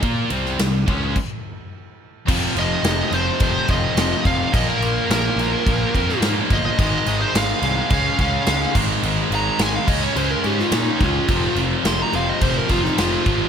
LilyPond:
<<
  \new Staff \with { instrumentName = "Lead electric guitar" } { \time 4/4 \key f \minor \tempo 4 = 107 r1 | r8 ees''4 c''4 ees''4 f''8 | ees''16 bes'8. bes'2 r8 ees''16 ees''16~ | ees''8. c''16 f''4. f''4 r8 |
r8 bes''8 aes''16 f''16 ees''16 des''16 c''16 bes'16 g'16 f'16 ees'8 f'8~ | f'8 r8 c'''16 bes''16 f''16 ees''16 c''16 bes'16 f'16 ees'16 f'4 | }
  \new Staff \with { instrumentName = "Overdriven electric guitar" } { \clef bass \time 4/4 \key f \minor <bes f' bes'>8 <c g c'>8 <c g>8 <des aes des'>8 r2 | <f, c f>2~ <f, c f>8 <f, c f>8 <f, c f>4 | <bes, f bes>2~ <bes, f bes>8 <bes, f bes>8 <bes, f bes>4 | <aes, ees aes>2 <des aes des'>4. <aes, ees aes>8~ |
<aes, ees aes>4. <des aes des'>2~ <des aes des'>8 | <f, c f>2~ <f, c f>8 <f, c f>8 <f, c f>4 | }
  \new Staff \with { instrumentName = "Distorted electric guitar" } { \clef bass \time 4/4 \key f \minor <bes f' bes'>8 <c g c'>8 <c g>8 <des aes des'>8 r2 | <f, c f>8 <f, c f>8 <f, c f>8 <f, c f>8 <f, c f>8 <f, c f>8 <f, c f>8 <f, c f>8 | <bes, f bes>8 <bes, f bes>8 <bes, f bes>8 <bes, f bes>8 <bes, f bes>8 <bes, f bes>8 <bes, f bes>8 <bes, f bes>8 | <aes, ees aes>8 <aes, ees aes>8 <aes, ees aes>8 <aes, ees aes>8 <des aes des'>8 <des aes des'>8 <des aes des'>8 <aes, ees aes>8 |
<aes, ees aes>8 <aes, ees aes>8 <aes, ees aes>8 <des aes des'>8 <des aes des'>8 <des aes des'>8 <des aes des'>8 <des aes des'>8 | <f, c f>8 <f, c f>8 <f, c f>8 <f, c f>8 <f, c f>8 <f, c f>8 <f, c f>8 <f, c f>8 | }
  \new Staff \with { instrumentName = "Distorted electric guitar" } { \clef bass \time 4/4 \key f \minor <bes f' bes'>8 <c g c'>8 <c g>8 <des aes des'>8 r2 | <f, c f>8 <f, c f>8 <f, c f>8 <f, c f>8 <f, c f>8 <f, c f>8 <f, c f>8 <f, c f>8 | <bes, f bes>8 <bes, f bes>8 <bes, f bes>8 <bes, f bes>8 <bes, f bes>8 <bes, f bes>8 <bes, f bes>8 <bes, f bes>8 | <aes, ees aes>8 <aes, ees aes>8 <aes, ees aes>8 <aes, ees aes>8 <des aes des'>8 <des aes des'>8 <des aes des'>8 <aes, ees aes>8 |
<aes, ees aes>8 <aes, ees aes>8 <aes, ees aes>8 <des aes des'>8 <des aes des'>8 <des aes des'>8 <des aes des'>8 <des aes des'>8 | <f, c f>8 <f, c f>8 <f, c f>8 <f, c f>8 <f, c f>8 <f, c f>8 <f, c f>8 <f, c f>8 | }
  \new Staff \with { instrumentName = "Picked electric bass" } { \clef bass \time 4/4 \key f \minor bes,8 c,8 c,8 des,8 r2 | f,,8 f,,8 f,,8 f,,8 f,,8 f,,8 f,,8 f,,8 | bes,,8 bes,,8 bes,,8 bes,,8 bes,,8 f,8 aes,8 g,,8 | aes,,8 aes,,8 aes,,8 c,8 des,8 des,8 des,8 aes,,8 |
aes,,8 aes,,8 aes,,8 des,8 des,8 aes,8 bes,8 des,8 | f,,8 f,,8 f,,8 f,,8 f,,8 f,,8 f,,8 aes,,8 | }
  \new DrumStaff \with { instrumentName = "Drums" } \drummode { \time 4/4 <bd cymr>8 cymr16 sn16 <cymr sn>8 <bd cymr>8 <cymc bd>4 r4 | <cymc bd>8 cymc8 <cymc sn>8 cymc8 <cymc bd>8 <cymc bd>8 <cymc sn>8 <cymc bd>8 | <cymc bd>8 cymc8 <cymc sn>8 cymc8 <cymc bd>8 <cymc bd>16 sn16 <cymc sn>8 <cymc bd>8 | <cymc bd>8 cymc8 <cymc sn>8 cymc8 <cymc bd>8 <cymc bd>8 <cymc sn>8 <cymc bd>8 |
cymc8 cymc8 <cymc sn>8 <cymc bd>8 cymc8 cymc16 sn16 <cymc sn>8 <cymc bd>8 | <cymc bd>8 cymc8 <cymc sn>8 cymc8 <cymc bd>8 <cymc bd>16 sn16 <cymc sn>8 <cymc bd>8 | }
>>